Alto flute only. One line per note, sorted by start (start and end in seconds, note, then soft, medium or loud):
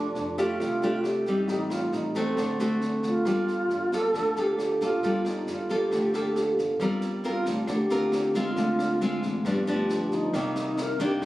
0.00 0.40 D4 medium
0.38 0.60 F4 medium
0.61 1.04 F4 medium
1.02 1.50 G4 medium
1.48 1.72 D#4 medium
1.71 1.95 F4 medium
1.94 2.19 D#4 medium
2.17 2.83 C4 medium
3.07 3.95 F4 medium
3.94 4.41 A4 loud
4.39 4.59 G4 medium
4.60 4.86 G4 medium
4.85 5.26 F4 medium
5.27 5.52 D#4 medium
5.50 5.75 F4 medium
5.73 6.60 G4 medium
7.29 7.47 F4 medium
7.49 7.73 D4 soft
7.71 8.39 G4 medium
8.37 9.03 F4 medium
9.04 9.23 F4 medium
9.26 9.49 D4 soft
9.48 10.15 G4 medium
10.13 10.83 D#4 medium
10.81 11.02 A#4 medium
11.02 11.25 G4 medium